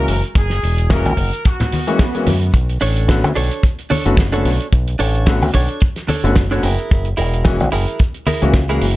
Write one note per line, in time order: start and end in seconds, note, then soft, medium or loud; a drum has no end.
0.00 0.11 E3 medium
0.00 0.11 G#3 medium
0.00 0.11 A#3 medium
0.00 0.11 C#4 medium
0.00 0.11 F#4 medium
0.00 0.21 A#4 medium
0.08 0.21 F#1 loud
0.08 open hi-hat loud
0.08 cabasa medium
0.24 closed hi-hat medium
0.24 cabasa soft
0.35 0.59 F#1 medium
0.35 0.87 G#4 loud
0.35 kick loud
0.35 closed hi-hat medium
0.35 cabasa medium
0.50 snare soft
0.50 closed hi-hat medium
0.50 cabasa soft
0.63 1.06 E1 medium
0.63 open hi-hat medium
0.63 cabasa medium
0.78 closed hi-hat medium
0.78 cabasa soft
0.90 1.07 E3 medium
0.90 1.07 G#3 medium
0.90 1.08 A#3 medium
0.90 1.08 C#4 medium
0.90 1.08 F#4 medium
0.90 1.45 A#4 medium
0.90 kick loud
0.90 snare loud
0.90 closed hi-hat medium
0.90 cabasa medium
1.05 1.16 A#1 medium
1.05 closed hi-hat medium
1.05 high conga medium
1.05 cabasa soft
1.17 1.30 F#1 medium
1.17 kick medium
1.17 open hi-hat loud
1.17 cabasa loud
1.33 closed hi-hat medium
1.33 cabasa soft
1.45 2.27 F#4 medium
1.45 kick loud
1.45 closed hi-hat medium
1.45 swell medium
1.45 cabasa medium
1.60 snare soft
1.60 closed hi-hat medium
1.60 low conga medium
1.60 cabasa soft
1.72 open hi-hat loud
1.72 high conga medium
1.72 cabasa medium
1.87 2.02 E3 medium
1.87 2.02 G#3 medium
1.87 2.02 A#3 medium
1.87 2.02 C#4 medium
1.87 2.02 F#4 medium
1.87 closed hi-hat medium
1.87 cabasa soft
1.99 kick loud
1.99 snare loud
1.99 closed hi-hat medium
1.99 cabasa soft
2.14 2.29 E3 medium
2.14 2.29 G#3 medium
2.14 2.29 A#3 medium
2.14 2.29 C#4 medium
2.14 2.29 F#4 medium
2.14 closed hi-hat medium
2.14 cabasa soft
2.27 2.50 F#2 medium
2.27 open hi-hat loud
2.27 high conga medium
2.27 cabasa medium
2.42 closed hi-hat medium
2.42 cabasa soft
2.54 2.77 B1 medium
2.54 kick loud
2.54 closed hi-hat medium
2.54 cabasa soft
2.69 closed hi-hat medium
2.69 cabasa soft
2.81 3.24 A1 medium
2.81 3.08 D4 loud
2.81 3.09 A4 loud
2.81 3.09 C#5 loud
2.81 open hi-hat loud
2.81 cabasa medium
2.97 closed hi-hat medium
2.97 cabasa soft
3.08 3.26 D3 medium
3.08 3.26 A3 medium
3.08 3.26 B3 medium
3.08 3.26 C#4 medium
3.08 3.26 F#4 medium
3.08 kick loud
3.08 snare loud
3.08 closed hi-hat medium
3.08 cabasa medium
3.24 3.34 D2 medium
3.24 closed hi-hat soft
3.24 high conga medium
3.24 cabasa soft
3.35 3.49 B1 medium
3.35 3.63 D4 medium
3.35 3.63 A4 medium
3.35 3.64 C#5 medium
3.35 open hi-hat loud
3.35 cabasa medium
3.51 closed hi-hat medium
3.51 cabasa soft
3.63 kick loud
3.63 closed hi-hat medium
3.63 cabasa medium
3.79 closed hi-hat medium
3.79 cabasa soft
3.90 4.12 D4 loud
3.90 4.12 A4 loud
3.90 4.12 C#5 loud
3.90 open hi-hat loud
3.90 high conga medium
3.90 cabasa medium
4.05 4.42 F#1 medium
4.05 4.20 D3 medium
4.05 4.20 A3 medium
4.05 4.20 B3 medium
4.05 4.20 C#4 medium
4.05 4.21 F#4 medium
4.05 closed hi-hat soft
4.05 cabasa soft
4.17 kick loud
4.17 snare loud
4.17 closed hi-hat medium
4.17 cabasa soft
4.32 4.47 D3 medium
4.32 4.47 A3 medium
4.32 4.47 B3 medium
4.32 4.48 C#4 medium
4.32 4.66 D4 medium
4.32 4.48 F#4 medium
4.32 4.66 A4 medium
4.32 4.67 C#5 medium
4.32 closed hi-hat medium
4.45 4.58 B1 loud
4.45 open hi-hat medium
4.45 cabasa medium
4.61 closed hi-hat medium
4.61 cabasa soft
4.72 4.95 B1 medium
4.72 kick loud
4.72 closed hi-hat medium
4.72 cabasa soft
4.87 closed hi-hat medium
4.87 cabasa soft
4.99 5.42 A1 medium
4.99 5.27 D4 loud
4.99 5.27 A4 loud
4.99 5.27 C#5 loud
4.99 open hi-hat loud
4.99 cabasa medium
5.15 closed hi-hat soft
5.15 cabasa soft
5.26 5.44 D3 medium
5.26 5.44 A3 medium
5.26 5.44 B3 medium
5.26 5.44 C#4 medium
5.26 5.44 F#4 medium
5.26 kick loud
5.26 snare loud
5.26 closed hi-hat medium
5.26 cabasa soft
5.42 5.52 D2 medium
5.42 open hi-hat medium
5.42 high conga medium
5.42 cabasa soft
5.54 5.67 B1 medium
5.54 5.81 D4 medium
5.54 5.81 A4 medium
5.54 5.82 C#5 medium
5.54 kick medium
5.54 open hi-hat loud
5.54 cabasa medium
5.69 closed hi-hat medium
5.69 cabasa soft
5.81 kick loud
5.81 closed hi-hat medium
5.81 cabasa medium
5.96 snare soft
5.96 closed hi-hat medium
5.96 cabasa soft
6.08 6.30 D4 loud
6.08 6.30 A4 loud
6.08 6.31 C#5 loud
6.08 open hi-hat loud
6.08 high conga medium
6.08 cabasa medium
6.24 6.60 F#1 medium
6.24 6.38 D3 medium
6.24 6.38 A3 medium
6.24 6.38 B3 medium
6.24 6.39 C#4 medium
6.24 6.39 F#4 medium
6.24 closed hi-hat medium
6.24 cabasa soft
6.36 kick loud
6.36 snare loud
6.36 closed hi-hat medium
6.36 cabasa soft
6.51 6.62 D3 medium
6.51 6.62 A3 medium
6.51 6.62 B3 medium
6.51 6.62 C#4 medium
6.51 6.63 D4 medium
6.51 6.62 F#4 medium
6.51 6.63 A4 medium
6.51 6.64 C#5 medium
6.51 closed hi-hat medium
6.63 6.76 F#1 loud
6.63 7.08 E4 medium
6.63 7.08 G#4 medium
6.63 7.09 A#4 loud
6.63 open hi-hat loud
6.63 cabasa medium
6.78 closed hi-hat medium
6.78 cabasa soft
6.91 7.14 F#1 medium
6.91 kick loud
6.91 closed hi-hat medium
6.91 cabasa soft
7.05 closed hi-hat medium
7.05 cabasa soft
7.17 7.60 E1 medium
7.17 7.45 E4 loud
7.17 7.45 G#4 loud
7.17 7.45 A#4 loud
7.17 open hi-hat loud
7.17 cabasa medium
7.33 closed hi-hat medium
7.33 cabasa soft
7.44 7.62 E3 medium
7.44 7.62 G#3 medium
7.44 7.62 A#3 medium
7.44 7.62 C#4 medium
7.44 7.62 F#4 medium
7.44 kick loud
7.44 snare loud
7.44 closed hi-hat medium
7.44 cabasa soft
7.60 7.70 A#1 medium
7.60 closed hi-hat soft
7.60 high conga medium
7.60 cabasa soft
7.72 7.85 F#1 medium
7.72 7.99 E4 medium
7.72 8.00 G#4 medium
7.72 8.00 A#4 medium
7.72 open hi-hat loud
7.72 cabasa medium
7.87 closed hi-hat medium
7.87 cabasa soft
7.99 kick loud
7.99 closed hi-hat medium
7.99 cabasa soft
8.14 closed hi-hat soft
8.14 cabasa soft
8.27 8.48 E4 loud
8.27 8.48 G#4 loud
8.27 8.49 A#4 loud
8.27 open hi-hat loud
8.27 high conga medium
8.27 cabasa medium
8.42 8.78 C#2 medium
8.42 8.56 E3 medium
8.42 8.56 G#3 medium
8.42 8.57 A#3 medium
8.42 8.57 C#4 medium
8.42 8.57 F#4 medium
8.42 closed hi-hat medium
8.42 cabasa soft
8.54 kick loud
8.54 snare loud
8.54 closed hi-hat medium
8.54 cabasa soft
8.69 8.84 E3 medium
8.69 8.84 G#3 medium
8.69 8.84 A#3 medium
8.69 8.84 C#4 medium
8.69 8.96 E4 medium
8.69 8.84 F#4 medium
8.69 8.96 G#4 medium
8.69 8.96 A#4 medium
8.69 closed hi-hat medium
8.82 8.94 F#1 loud
8.82 open hi-hat loud
8.82 cabasa medium